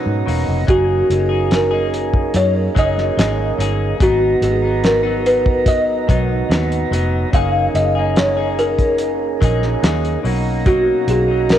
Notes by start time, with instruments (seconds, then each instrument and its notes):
Already playing: clean electric guitar B2 F#3 D#4, tonewheel organ C#4 D#4 F#4 A#5, kalimba B4
0.06 fingered electric bass G#2
0.26 fingered electric bass E1, clean electric guitar B2 F#3 A#3 D#4, open hi-hat
0.48 fingered electric bass F1
0.65 fingered electric bass F#1, clean electric guitar F#3 A#3 D#4, tonewheel organ C#4 D#4 G#4, kalimba F#4, kick, closed hi-hat
0.70 clean electric guitar G#4, tonewheel organ A#4
1.10 fingered electric bass F#1, kalimba G#4, closed hi-hat
1.29 clean electric guitar A#3 D#4 G#4
1.51 kalimba A#4, snare, closed hi-hat
1.71 clean electric guitar A#3 D#4 G#4
1.94 closed hi-hat
2.13 kick
2.34 fingered electric bass F#2, kalimba C#5, closed hi-hat
2.75 fingered electric bass F#1, clean electric guitar F#3 A#3 D#4 G#4, kalimba D#5, kick, closed hi-hat
2.98 snare
3.17 fingered electric bass G#1, clean electric guitar F#3 A#3 D#4 G#4, snare, closed hi-hat
3.58 fingered electric bass G1, clean electric guitar F#3 A#3 D#4 G#4, closed hi-hat
3.98 fingered electric bass G#1, clean electric guitar G#2 F#3, tonewheel organ B3 D#4 F#4, kalimba F#4, kick, closed hi-hat
4.03 clean electric guitar B3 D#4, tonewheel organ A#5
4.42 fingered electric bass G#1, kalimba G#4, closed hi-hat
4.62 clean electric guitar F#3 B3 D#4
4.84 kalimba A#4, snare, closed hi-hat
5.03 clean electric guitar F#3 B3 D#4
5.26 kalimba B4, closed hi-hat
5.46 kick
5.66 kalimba D#5, kick, closed hi-hat
6.07 fingered electric bass B1, clean electric guitar G#2 F#3 B3 D#4, kick, closed hi-hat
6.49 fingered electric bass D#2, clean electric guitar G#2 F#3 B3 D#4, snare, closed hi-hat
6.72 closed hi-hat
6.91 fingered electric bass F1, clean electric guitar G#2 F#3 B3 D#4, closed hi-hat
7.31 fingered electric bass F#1, clean electric guitar F#3 A#3 D#4, tonewheel organ C#4 D#4 G#4, kalimba F5, kick, closed hi-hat
7.36 clean electric guitar G#4, tonewheel organ A#4
7.74 fingered electric bass F#1, kalimba D#5, closed hi-hat
7.95 clean electric guitar A#3 D#4 G#4
8.16 kalimba C#5, snare, closed hi-hat
8.37 clean electric guitar A#3 D#4 G#4
8.59 kalimba A#4, closed hi-hat
8.79 kick, closed hi-hat
8.98 closed hi-hat
9.41 fingered electric bass A#1, clean electric guitar F#3 A#3 D#4 G#4, kick, closed hi-hat
9.62 snare
9.82 fingered electric bass D#2, clean electric guitar F#3 A#3 D#4 G#4, snare, closed hi-hat
10.05 closed hi-hat
10.22 fingered electric bass B1, clean electric guitar B2 F#3 A#3, tonewheel organ C#4 D#4 F#4, open hi-hat
10.27 clean electric guitar D#4, tonewheel organ A#5
10.65 clean electric guitar B2 F#3 A#3 D#4, kalimba F#4, kick, closed hi-hat
11.07 fingered electric bass B1, kalimba G#4, closed hi-hat
11.28 clean electric guitar F#3 A#3 D#4
11.49 kalimba A#4, snare, closed hi-hat